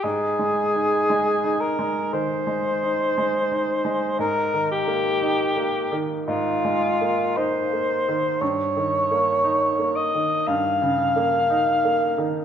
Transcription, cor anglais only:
\new Staff \with { instrumentName = "Cor anglais" } { \time 4/4 \key aes \major \tempo 4 = 58 aes'4. bes'8 c''2 | bes'8 g'4 r8 f'4 c''4 | des''4. ees''8 f''2 | }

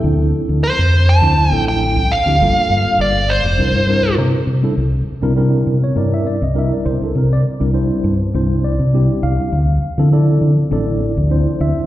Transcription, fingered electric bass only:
\new Staff \with { instrumentName = "Fingered electric bass" } { \clef bass \time 4/4 \key c \mixolydian \tempo 4 = 101 d,8 r16 d,16 r16 f,8. d,8 a,,8. c,16 r16 d,16 | g,,16 r16 g,16 r16 g,,8. f,,16 c,16 g,8. c16 r16 c16 r16 | c,8 r16 c8. c16 r16 g,8 r16 c,8 r16 c,16 r16 | c8 r16 c,8 r16 g,8 c,8. c8 r16 c,16 r16 |
d,8 r16 d8. d16 r16 a,,8 r16 d,8 r16 d,16 r16 | }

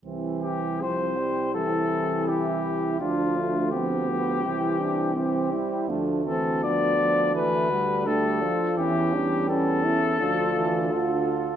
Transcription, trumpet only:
\new Staff \with { instrumentName = "Trumpet" } { \time 4/4 \key c \major \tempo 4 = 83 r8 g'8 c''4 a'4 g'4 | f'4 g'2. | r8 a'8 d''4 b'4 a'4 | g'4 a'2. | }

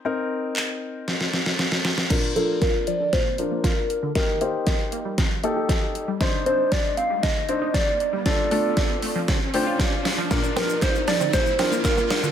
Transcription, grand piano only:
\new Staff \with { instrumentName = "Grand piano" } { \time 4/4 \key bes \major \tempo 4 = 117 << { r1 | r1 | r1 | r1 |
r2 r8 g''8 f''4 | r1 | } \\ { <c' ees' bes'>1 | <d' f' bes'>8 <d' f' bes'>4. r8 <d' f' bes'>4~ <d' f' bes'>16 r16 | <ees' g' bes'>8 <ees' g' c''>4. r8 <ees' g' a'>4~ <ees' g' a'>16 r16 | <d' ees' c''>8 <d' ees' c''>4. r8 <d' ees' c''>4~ <d' ees' c''>16 r16 |
<d' f' a'>8 <d' f' a'>4. r8 <d' f' c''>4~ <d' f' c''>16 r16 | <d' f' bes'>8 <d' f' bes'>4. r8 <d' f' bes'>4~ <d' f' bes'>16 r16 | } >> }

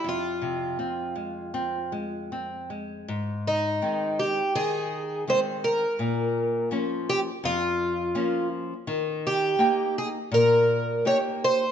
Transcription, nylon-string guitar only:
\new Staff \with { instrumentName = "Nylon-string guitar" } { \clef bass \time 4/4 \key f \minor \tempo 4 = 82 f,8 c8 c'8 aes8 c'8 aes8 c'8 aes8 | \key aes \major aes,4 <ees aes c'>4 ees4 <ees aes c'>4 | bes,4 <f bes des'>4 f,4 <f bes des'>4 | ees4 <bes ees' g''>4 bes,4 <bes ees' g'>4 | }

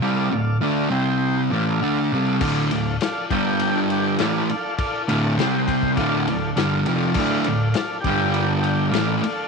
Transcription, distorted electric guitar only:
\new Staff \with { instrumentName = "Distorted electric guitar" } { \clef bass \time 4/4 \key d \minor \tempo 4 = 101 <c g c'>8 <d, a,>8 <d a d'>8 <c g c'>4 <a, e a>8 <d a d'>8 <c g c'>8 | <d, a, d>8 <d, a,>8 r8 <g, d g>4. <a, e a>8 r8 | r8 <d, a, d>8 <c g c'>4 <d, a, d>8 <d, a,>8 <g, d g>8 <f, c f>8 | <d, a, d>8 <d, a,>8 r8 <g, d g>4. <a, e a>8 r8 | }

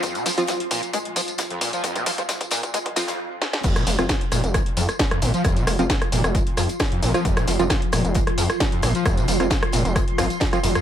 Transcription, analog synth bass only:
\new Staff \with { instrumentName = "Analog synth bass" } { \clef bass \time 4/4 \key f \minor \tempo 4 = 133 r1 | r1 | f,,8 f,,16 f,,16 r8 f,,16 f,,8 r16 f,16 r8. aes,,16 r16 | f,,8 f,,16 f,,16 r8 f,,16 f,,8 r16 f,16 r8. aes,,16 r16 |
f,,8 f,,16 f,,16 r8 f,,16 f,,8 r16 f,16 r8. aes,,16 r16 | f,,8 f,,16 f,,16 r8 f,,16 f,,8 r16 aes,,16 r8. f,,16 r16 | }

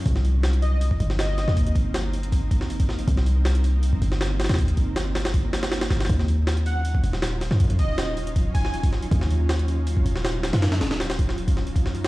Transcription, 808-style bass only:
\new Staff \with { instrumentName = "808-style bass" } { \clef bass \time 4/4 \key ees \lydian \tempo 4 = 159 c,2~ c,8 g,,4~ g,,16 ees,16~ | ees,8 g,,2.~ g,,8 | c,2~ c,8 g,,4~ g,,16 ees,16~ | ees,8 g,,2. g,,8 |
ees,2~ ees,8 ees,,4~ ees,,16 ges,16~ | ges,8 ees,,2.~ ees,,8 | ees,2~ ees,8 ees,,4~ ees,,16 ges,16~ | ges,8 ees,,2~ ees,,8 ges,4 | }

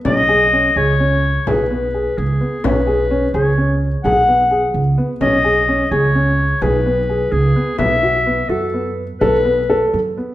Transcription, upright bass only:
\new Staff \with { instrumentName = "Upright bass" } { \clef bass \time 11/8 \key fis \dorian \tempo 4 = 128 b,,4. cis,4. b,,4. cis,8 r8 | b,,4. cis,4. b,,4. cis,8 r8 | b,,4. cis,4. b,,4. cis,8 r8 | b,,4. fis,4. b,,4. fis,8 r8 | }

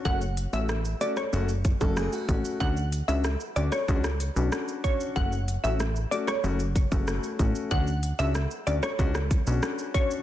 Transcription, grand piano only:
\new Staff \with { instrumentName = "Grand piano" } { \time 4/4 \key fis \minor \tempo 4 = 94 <a cis' fis'>16 r8 <a cis' fis'>16 r8 <a cis' fis'>16 r16 <a cis' fis'>16 r8 <a cis' fis'>8. <a cis' fis'>8 | <cis' d' fis'>16 r8 <cis' d' fis'>16 r8 <cis' d' fis'>16 r16 <cis' d' fis'>16 r8 <cis' d' fis'>8. <cis' d' fis'>8 | <a cis' fis'>16 r8 <a cis' fis'>16 r8 <a cis' fis'>16 r16 <a cis' fis'>16 r8 <a cis' fis'>8. <a cis' fis'>8 | <cis' d' fis'>16 r8 <cis' d' fis'>16 r8 <cis' d' fis'>16 r16 <cis' d' fis'>16 r8 <cis' d' fis'>8. <cis' d' fis'>8 | }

